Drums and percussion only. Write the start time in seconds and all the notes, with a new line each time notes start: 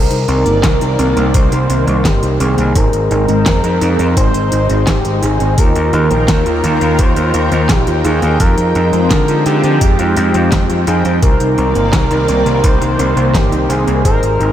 0.11 closed hi-hat
0.28 closed hi-hat
0.46 closed hi-hat
0.64 kick, snare, clap, closed hi-hat
0.81 closed hi-hat
0.99 closed hi-hat
1.17 closed hi-hat
1.34 kick, closed hi-hat
1.52 closed hi-hat
1.70 closed hi-hat
1.88 closed hi-hat
2.05 kick, snare, clap, closed hi-hat
2.23 closed hi-hat
2.40 closed hi-hat
2.58 closed hi-hat
2.75 kick, closed hi-hat
2.93 closed hi-hat
3.11 closed hi-hat
3.28 closed hi-hat
3.46 kick, snare, clap, closed hi-hat
3.64 closed hi-hat
3.81 closed hi-hat
3.99 closed hi-hat
4.17 kick, closed hi-hat
4.34 closed hi-hat
4.52 closed hi-hat
4.70 closed hi-hat
4.87 kick, snare, clap, closed hi-hat
5.05 closed hi-hat
5.23 closed hi-hat
5.40 closed hi-hat
5.58 kick, closed hi-hat
5.75 closed hi-hat
5.93 closed hi-hat
6.11 closed hi-hat
6.28 kick, snare, clap, closed hi-hat
6.46 closed hi-hat
6.64 closed hi-hat
6.81 closed hi-hat
6.99 kick, closed hi-hat
7.16 closed hi-hat
7.34 closed hi-hat
7.52 closed hi-hat
7.69 kick, snare, clap, closed hi-hat
7.87 closed hi-hat
8.05 closed hi-hat
8.22 closed hi-hat
8.40 kick, closed hi-hat
8.58 closed hi-hat
8.75 closed hi-hat
8.93 closed hi-hat
9.11 kick, snare, clap, closed hi-hat
9.28 closed hi-hat
9.46 closed hi-hat
9.64 closed hi-hat
9.81 kick, closed hi-hat
9.99 closed hi-hat
10.17 closed hi-hat
10.34 closed hi-hat
10.52 kick, snare, clap, closed hi-hat
10.70 closed hi-hat
10.87 closed hi-hat
11.05 closed hi-hat
11.22 kick, closed hi-hat
11.40 closed hi-hat
11.58 closed hi-hat
11.75 closed hi-hat
11.93 kick, snare, clap, closed hi-hat
12.11 closed hi-hat
12.28 closed hi-hat
12.46 closed hi-hat
12.64 kick, closed hi-hat
12.82 closed hi-hat
12.99 closed hi-hat
13.17 closed hi-hat
13.34 kick, snare, clap, closed hi-hat
13.52 closed hi-hat
13.70 closed hi-hat
13.88 closed hi-hat
14.05 kick, closed hi-hat
14.23 closed hi-hat
14.41 closed hi-hat